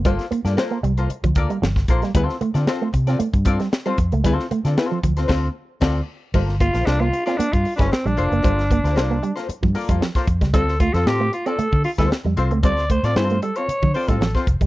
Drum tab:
CC |----------------|----------------|--------x---x---|x---------------|
HH |xxxx--xxxxxx-xxx|x-xx--xxxxxx-xxx|x-xx--xx--------|--xx--xxxxox-xxx|
SD |-o-oo-------oo-o|-o-oo--o---oo---|-o-oo--oo---o---|-o-oo--o---oo---|
BD |o--------oo--oo-|o-----o--oo---o-|o-----o-o---o---|o-o------o-o----|

CC |----------------|----------------|----------------|
HH |xxxx--xxx-ox-xxx|x-xx--xxx-ox--xx|xxxx-xxxx-ox--xx|
SD |-o-oo--o----oo-o|-o-oo------oo---|-o-oo-------oo--|
BD |o-o------o-o-ooo|o-o------o-o----|o-o------o-o-ooo|